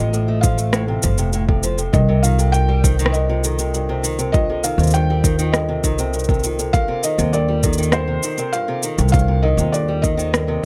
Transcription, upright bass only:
0.00 0.96 A1 medium
1.04 1.18 G1 medium
1.18 1.86 F1 medium
1.94 4.72 C2 loud
4.78 5.84 D#2 loud
5.84 6.82 C2 medium
7.18 8.17 D#2 medium
8.98 9.52 C2 loud
9.57 10.56 D#2 loud

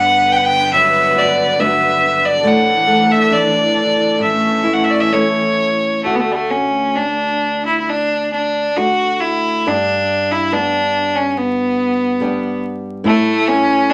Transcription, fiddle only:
0.00 0.33 F#5 medium
0.32 0.38 G5 loud
0.36 0.46 F#5 medium
0.45 0.73 G5 loud
0.73 1.19 E5 medium
1.18 1.62 D5 medium
1.60 2.27 E5 medium
2.25 2.48 D5 medium
2.47 3.13 F#5 medium
3.11 3.34 E5 medium
3.33 4.20 D5 medium
4.22 4.75 E5 medium
4.73 4.86 F#5 medium
4.84 4.92 E5 medium
4.90 5.02 D5 medium
5.01 5.14 E5 medium
5.12 6.03 C#5 medium
6.04 6.16 A3 medium
6.15 6.21 B3 soft
6.20 6.33 A3 medium
6.31 6.37 G3 soft
6.31 6.52 A3 medium
6.50 6.97 C#4 medium
6.96 7.65 D4 medium
7.65 7.79 E4 medium
7.80 7.91 E4 soft
7.89 8.32 D4 medium
8.33 8.78 D4 medium
8.76 9.22 F#4 medium
9.20 9.69 E4 medium
9.67 10.33 D4 medium
10.32 10.54 E4 medium
10.53 11.16 D4 medium
11.15 11.30 C#4 medium
11.30 11.38 C#4 medium
11.37 12.63 B3 medium
13.06 13.49 A3 medium
13.48 13.91 C#4 medium
13.90 13.94 D4 medium

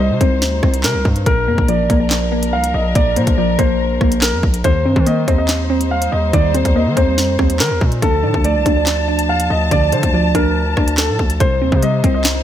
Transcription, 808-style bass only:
0.00 0.11 C2 loud
0.10 0.20 C3 loud
0.21 0.43 C2 loud
0.42 0.62 D2 loud
0.63 0.85 C2 loud
0.84 0.96 C3 loud
0.94 1.05 C2 loud
1.05 1.25 G2 loud
1.26 1.49 A#1 loud
1.47 1.57 F2 loud
1.58 1.81 A#1 loud
1.79 1.89 A1 loud
1.90 2.55 A#1 loud
2.53 2.73 C2 loud
2.74 2.95 A#1 loud
2.95 3.18 A#1 loud
3.16 3.26 A#2 loud
3.27 3.57 A#1 loud
3.59 3.99 A#1 loud
4.01 4.34 A#1 loud
4.33 4.43 F2 loud
4.43 4.64 A#1 loud
4.64 4.87 D#2 loud
4.85 4.96 G2 loud
4.96 5.26 D#3 loud
5.28 6.09 D#2 loud
6.12 6.33 D#2 loud
6.33 6.64 D#2 loud
6.65 6.88 D#2 loud
6.86 6.96 D#3 loud
6.97 7.19 D#2 loud
7.18 7.38 F2 loud
7.39 7.62 D#2 loud
7.60 7.72 D#3 loud
7.71 7.81 D#2 loud
7.81 8.02 A#2 loud
8.02 8.25 D2 loud
8.23 8.34 A2 loud
8.34 8.57 D2 loud
8.55 8.65 C2 medium
8.66 9.31 D2 loud
9.29 9.49 D#2 loud
9.50 9.71 D2 loud
9.71 9.94 D2 loud
9.93 10.03 D3 loud
10.03 10.34 D2 loud
10.35 10.75 D2 loud
10.77 11.10 D2 loud
11.09 11.19 A2 medium
11.19 11.40 D2 loud
11.40 11.63 C2 loud
11.62 11.72 D#2 loud
11.72 12.03 C3 loud
12.04 12.43 C2 loud

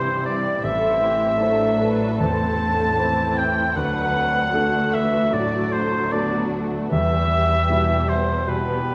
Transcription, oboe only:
0.00 0.25 C5 medium
0.25 0.66 D5 medium
0.64 1.92 E5 medium
2.21 3.39 A5 medium
3.38 3.76 G5 medium
3.76 4.96 F#5 medium
4.94 5.35 E5 medium
5.33 5.74 D5 medium
5.72 6.14 C5 medium
6.12 6.52 D5 medium
6.92 8.10 E5 medium
8.09 8.50 C5 medium
8.48 8.95 B4 medium

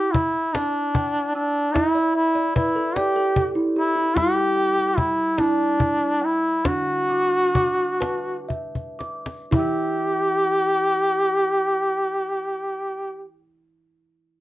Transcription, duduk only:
0.00 0.14 G4 loud
0.13 0.56 E4 medium
0.54 1.34 D4 medium
1.35 1.76 D4 medium
1.74 2.15 E4 loud
2.16 2.53 E4 medium
2.56 2.98 E4 medium
2.96 3.49 G4 medium
3.77 4.19 E4 loud
4.17 4.99 G4 loud
4.98 5.41 E4 medium
5.40 6.26 D4 medium
6.24 6.69 E4 medium
6.68 8.51 F#4 loud
9.53 13.29 G4 loud

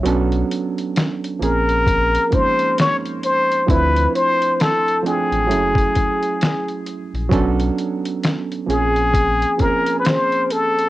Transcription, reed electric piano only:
0.04 1.26 F#3 loud
0.04 1.26 B3 loud
0.04 1.27 C#4 loud
0.04 1.27 D4 loud
0.08 1.28 A4 loud
1.39 2.16 F3 medium
1.39 2.17 A#3 medium
1.39 2.17 C4 medium
1.39 2.18 C#4 medium
1.39 2.18 G#4 medium
2.31 3.20 F3 medium
2.31 3.21 G#3 medium
2.31 3.21 A#3 medium
2.31 3.22 C#4 medium
2.35 3.22 D#4 medium
3.66 4.56 F3 medium
3.66 4.57 A3 medium
3.66 4.57 C4 medium
3.66 4.58 D4 medium
3.70 4.58 E4 loud
5.03 5.49 F3 medium
5.03 5.47 A3 medium
5.03 5.50 C4 medium
5.03 5.51 D4 medium
5.07 5.51 G5 medium
5.47 6.96 F#3 medium
5.47 6.96 A3 medium
5.47 6.97 C#4 medium
5.47 6.97 E4 medium
5.51 6.98 G#4 medium
7.29 8.52 F#3 loud
7.29 8.53 B3 medium
7.29 8.53 C#4 loud
7.29 8.54 D4 loud
7.29 8.54 A4 loud
8.66 9.43 F3 medium
8.66 9.44 A#3 medium
8.66 9.44 C4 medium
8.66 9.45 C#4 medium
8.71 9.46 G#4 medium
9.58 10.47 F3 medium
9.58 10.48 A#3 medium
9.58 10.49 C4 medium
9.58 10.49 C#4 medium
9.62 10.50 G#4 medium

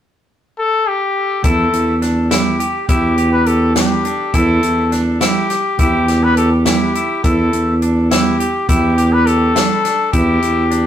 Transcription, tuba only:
1.44 1.69 E2 medium
1.73 2.72 E2 medium
2.89 4.13 E2 medium
4.34 4.59 E2 medium
4.63 5.39 E2 medium
5.79 7.03 E2 medium
7.24 7.49 E2 medium
7.53 8.52 E2 medium
8.69 9.70 E2 medium
10.14 10.38 E2 medium
10.42 10.87 E2 medium

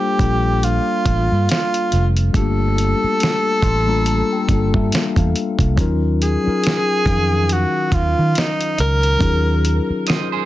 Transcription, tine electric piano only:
0.00 0.18 G3 medium
0.00 0.20 A#3 medium
0.00 0.21 D4 medium
0.00 0.22 F4 medium
0.00 0.23 A4 medium
0.00 0.14 C5 medium
0.18 1.70 G3 medium
0.18 1.71 A#3 medium
0.18 1.72 D4 medium
0.18 1.72 F4 medium
0.23 1.73 A4 medium
2.33 3.63 G3 medium
2.33 2.42 A3 medium
2.33 3.65 D4 medium
2.33 3.65 F4 medium
2.38 3.67 A#3 medium
2.38 3.66 G4 medium
3.64 3.86 C6 medium
3.86 4.40 G3 medium
3.86 4.41 A#3 medium
3.86 4.42 D4 medium
3.86 4.42 F4 medium
3.86 4.05 A#5 medium
3.91 4.43 A4 medium
4.07 4.30 A5 medium
4.33 4.71 G5 medium
4.48 5.62 G3 medium
4.48 5.62 A#3 medium
4.48 5.63 D4 medium
4.48 5.64 F4 medium
4.52 4.58 A4 medium
4.59 5.67 A4 medium
4.75 4.91 E5 medium
4.94 5.16 F5 medium
5.18 5.74 F5 medium
5.76 6.34 F#3 loud
5.76 6.35 C#4 loud
5.76 6.35 D#4 loud
5.76 6.36 F4 medium
5.81 6.36 A#4 loud
6.44 6.98 F#3 medium
6.44 6.98 C#4 medium
6.44 6.99 D#4 medium
6.44 7.00 F4 medium
6.49 7.00 A#4 medium
7.05 8.56 D#3 medium
7.05 8.57 C#4 medium
7.05 8.57 D#4 medium
7.05 8.58 F5 medium
7.09 8.59 A#4 medium
9.18 10.45 F#3 medium
9.18 10.45 C#4 medium
9.18 10.45 D#4 medium
9.18 10.45 F4 medium
9.23 9.29 G#4 medium
9.29 10.45 A#4 loud

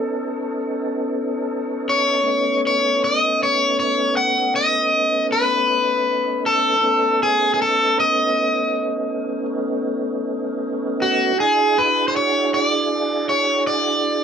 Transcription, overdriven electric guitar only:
0.00 1.09 A4 medium
1.89 2.60 C#5 medium
2.67 3.04 C#5 medium
3.04 3.42 D#5 medium
3.43 3.76 C#5 medium
3.80 4.16 C#5 medium
4.17 4.55 F#5 medium
4.56 5.26 D#5 medium
5.32 6.46 B4 medium
6.46 7.22 A4 medium
7.23 7.53 G#4 medium
7.54 7.59 G#4 soft
7.62 7.98 A4 medium
8.00 9.45 D#5 medium
11.02 11.39 F#4 medium
11.40 11.77 G#4 medium
11.78 12.08 B4 medium
12.08 12.14 C5 medium
12.16 12.50 C#5 medium
12.54 12.65 C#5 medium
12.65 13.29 D5 medium
13.29 13.63 C#5 medium
13.67 14.24 D5 medium

